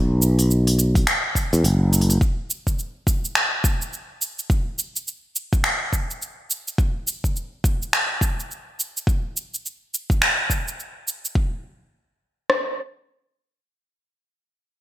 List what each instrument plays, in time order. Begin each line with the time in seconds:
Already playing: fretless electric bass B1
0.22 shaker
0.39 open hi-hat, shaker
0.51 shaker
0.67 open hi-hat
0.79 open hi-hat, shaker
0.95 kick, open hi-hat, shaker
1.07 finger snap, open hi-hat, shaker
1.35 kick, open hi-hat, shaker
1.53 fretless electric bass E2, open hi-hat, shaker
1.64 fretless electric bass F#1, open hi-hat, shaker
1.93 open hi-hat, shaker
2.01 open hi-hat
2.10 open hi-hat, shaker
2.21 kick, shaker
2.50 shaker
2.67 kick, shaker
2.79 shaker
3.07 kick, shaker
3.25 shaker
3.35 finger snap, shaker
3.64 kick, shaker
3.82 shaker
3.93 shaker
4.22 shaker
4.39 shaker
4.50 kick, shaker
4.79 shaker
4.96 shaker
5.08 shaker
5.36 shaker
5.53 kick, shaker
5.64 finger snap, shaker
5.93 kick, shaker
6.11 shaker
6.22 shaker
6.51 shaker
6.68 shaker
6.78 kick, shaker
7.07 shaker
7.24 kick, shaker
7.36 shaker
7.64 kick, shaker
7.82 shaker
7.93 finger snap, shaker
8.21 kick, shaker
8.40 shaker
8.51 shaker
8.80 shaker
8.97 shaker
9.07 kick, shaker
9.37 shaker
9.54 shaker
9.66 shaker
9.94 shaker
10.10 kick, shaker
10.22 finger snap, shaker
10.50 kick, shaker
10.68 shaker
10.80 shaker
11.08 shaker
11.25 shaker
11.35 kick
12.50 cross-stick